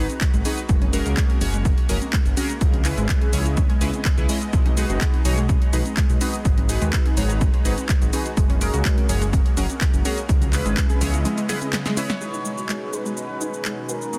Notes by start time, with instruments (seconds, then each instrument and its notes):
Already playing: supersaw synth G#3 D#4 F#4 B4 A#5
0.10 closed hi-hat, high conga, shaker
0.21 kick, clap, closed hi-hat, shaker
0.34 detuned saw bass G#1, synth pluck G#3, closed hi-hat, shaker
0.45 analog polysynth D#4 F#4 G#4 B4, synth pluck G#4, open hi-hat, high conga, shaker
0.58 closed hi-hat, shaker
0.69 detuned saw bass F#1, synth pluck G#3, supersaw synth G#3 A#3, kick, closed hi-hat, shaker
0.82 synth pluck C#4, closed hi-hat, high conga, low conga
0.93 synth pluck G#3, analog polysynth C#4 F#4 G#4 A#4, open hi-hat, shaker
1.06 detuned saw bass C#2, synth pluck F#4, closed hi-hat, shaker
1.17 synth pluck G#3, kick, clap, closed hi-hat, shaker
1.30 closed hi-hat, high conga
1.41 detuned saw bass F#1, analog polysynth C#4 F#4 G#4 C#5, synth pluck G#4, open hi-hat, low conga, shaker
1.54 synth pluck G#3, closed hi-hat, shaker
1.65 kick, closed hi-hat, high conga, shaker
1.78 closed hi-hat
1.89 detuned saw bass F#1, synth pluck C#4, analog polysynth C#4 F#4 G#4 A#4, open hi-hat, low conga, shaker
2.02 closed hi-hat, high conga, shaker
2.13 synth pluck G#3, kick, clap, closed hi-hat, shaker
2.26 detuned saw bass F#1, closed hi-hat, shaker
2.37 analog polysynth C#4 F#4 G#4 A#4, synth pluck F#4, open hi-hat, high conga, shaker
2.50 closed hi-hat, shaker
2.61 detuned saw bass C#2, supersaw synth C#3 B3 E4 D#5, kick, closed hi-hat, shaker
2.74 closed hi-hat, high conga, low conga
2.85 analog polysynth C#4 E4 G#4 B4, clap, open hi-hat, shaker
2.98 detuned saw bass G#1, synth pluck G#3, closed hi-hat, shaker
3.09 kick, clap, closed hi-hat, shaker
3.22 synth pluck G#4, closed hi-hat, high conga
3.33 detuned saw bass C#2, synth pluck G#3, analog polysynth C#4 E4 G#4 C#5, open hi-hat, low conga, shaker
3.46 closed hi-hat, shaker
3.57 synth pluck C#4, kick, closed hi-hat, high conga, low conga, shaker
3.70 synth pluck G#3, closed hi-hat
3.81 detuned saw bass C#2, synth pluck G#3, analog polysynth C#4 E4 G#4 B4, open hi-hat, shaker
3.94 closed hi-hat, high conga, shaker
4.05 kick, clap, closed hi-hat, shaker
4.18 detuned saw bass C#2, analog polysynth C#4 E4 G#4 B4, synth pluck E4, closed hi-hat, shaker
4.29 synth pluck G#3, analog polysynth C#4 E4 G#4 D#5, open hi-hat, high conga, shaker
4.42 closed hi-hat, shaker
4.53 detuned saw bass B1, synth pluck G#3, kick, closed hi-hat, shaker
4.66 synth pluck D#4, closed hi-hat, high conga, low conga
4.77 synth pluck G#3, analog polysynth D#4 F#4 G#4 B4, open hi-hat, shaker
4.90 detuned saw bass F#1, synth pluck F#4, closed hi-hat, shaker
5.01 synth pluck G#3, kick, clap, closed hi-hat, shaker
5.14 closed hi-hat, high conga
5.25 detuned saw bass B1, analog polysynth D#4 F#4 G#4 C#5, synth pluck G#4, open hi-hat, low conga, shaker
5.38 synth pluck G#3, closed hi-hat, shaker
5.49 kick, closed hi-hat, high conga, shaker
5.62 closed hi-hat
5.73 detuned saw bass B1, analog polysynth D#4 F#4 G#4 B4, synth pluck D#4, open hi-hat, low conga, shaker
5.86 closed hi-hat, high conga, shaker
5.97 synth pluck G#3, kick, clap, closed hi-hat, shaker
6.10 detuned saw bass B1, closed hi-hat, shaker
6.21 analog polysynth D#4 F#4 G#4 B4, synth pluck F#4, open hi-hat, high conga, shaker
6.34 closed hi-hat, shaker
6.45 detuned saw bass G#1, supersaw synth D#4 F#4 B4 A#5, kick, closed hi-hat, shaker
6.58 closed hi-hat, high conga, low conga
6.69 analog polysynth D#4 F#4 G#4 B4, open hi-hat, shaker
6.82 detuned saw bass D#2, synth pluck G#3, closed hi-hat, shaker
6.93 kick, clap, closed hi-hat, shaker
7.06 synth pluck G#4, closed hi-hat, high conga
7.17 detuned saw bass G#1, synth pluck G#3, analog polysynth D#4 F#4 G#4 C#5, open hi-hat, low conga, shaker
7.30 closed hi-hat, shaker
7.41 synth pluck G#3, kick, closed hi-hat, high conga, low conga, shaker
7.54 synth pluck G#3, closed hi-hat
7.65 detuned saw bass G#1, analog polysynth D#4 F#4 G#4 B4, synth pluck F#4, open hi-hat, shaker
7.78 closed hi-hat, high conga, shaker
7.89 kick, clap, closed hi-hat, shaker
8.02 detuned saw bass G#1, synth pluck G#3, closed hi-hat, shaker
8.13 analog polysynth D#4 F#4 G#4 B4, synth pluck G#4, open hi-hat, high conga, shaker
8.26 closed hi-hat, shaker
8.37 detuned saw bass F#1, synth pluck G#3, supersaw synth A#3, kick, closed hi-hat, shaker
8.50 synth pluck C#4, closed hi-hat, high conga, low conga
8.61 synth pluck G#3, analog polysynth C#4 F#4 G#4 A#4, open hi-hat, shaker
8.74 detuned saw bass C#2, synth pluck F#4, closed hi-hat, shaker
8.85 synth pluck G#3, kick, clap, closed hi-hat, shaker
8.98 closed hi-hat, high conga
9.09 detuned saw bass F#1, analog polysynth C#4 F#4 G#4 C#5, synth pluck G#4, open hi-hat, low conga, shaker
9.22 synth pluck G#3, closed hi-hat, shaker
9.33 kick, closed hi-hat, high conga, shaker
9.46 closed hi-hat
9.57 detuned saw bass F#1, synth pluck C#4, analog polysynth C#4 F#4 G#4 A#4, open hi-hat, low conga, shaker
9.70 closed hi-hat, high conga, shaker
9.81 synth pluck G#3, kick, clap, closed hi-hat, shaker
9.94 detuned saw bass F#1, closed hi-hat, shaker
10.05 analog polysynth C#4 F#4 G#4 A#4, synth pluck F#4, open hi-hat, high conga, shaker
10.18 closed hi-hat, shaker
10.29 detuned saw bass C#2, supersaw synth C#3 G#3 B3 E4 D#5, kick, closed hi-hat, shaker
10.42 closed hi-hat, high conga, low conga, shaker
10.53 analog polysynth C#4 E4 G#4 B4, clap, open hi-hat, shaker
10.66 detuned saw bass G#1, synth pluck G#3, closed hi-hat, shaker
10.77 kick, clap, closed hi-hat, shaker
10.90 synth pluck G#4, closed hi-hat, high conga, shaker
11.01 detuned saw bass C#2, synth pluck G#3, analog polysynth C#4 E4 G#4 C#5, open hi-hat, low conga, shaker
11.14 closed hi-hat, shaker
11.25 synth pluck G#3, closed hi-hat, high conga, low conga, shaker
11.38 synth pluck G#3, closed hi-hat, shaker
11.49 analog polysynth C#4 E4 G#4 B4, synth pluck G#4, snare, open hi-hat, shaker
11.62 closed hi-hat, high conga, shaker
11.73 snare, clap, closed hi-hat, shaker
11.86 synth pluck G#3, snare, closed hi-hat, shaker
11.97 analog polysynth C#4 E4 G#4 B4, synth pluck E4, analog synth lead C#5, open hi-hat, high conga, shaker
12.10 synth pluck B3, snare, closed hi-hat, shaker
12.21 supersaw synth B2 G#3 C#4 D#4 B4, synth pluck G#3, analog polysynth D#4 F#4 G#4 B4, shaker
12.34 synth pluck D#4, shaker
12.45 synth pluck G#3, shaker
12.58 synth pluck F#4, shaker
12.69 synth pluck G#3, clap, shaker
12.93 synth pluck G#4, analog synth lead B4, shaker
13.06 synth pluck G#3, shaker
13.17 analog synth lead B4, shaker
13.41 synth pluck D#4, shaker
13.54 shaker
13.65 synth pluck G#3, clap, shaker
13.89 synth pluck F#4, analog synth lead A#4, shaker
14.02 shaker
14.13 supersaw synth G#2 B3 F#4 A#4, analog polysynth B3 D#4 F#4 G#4, shaker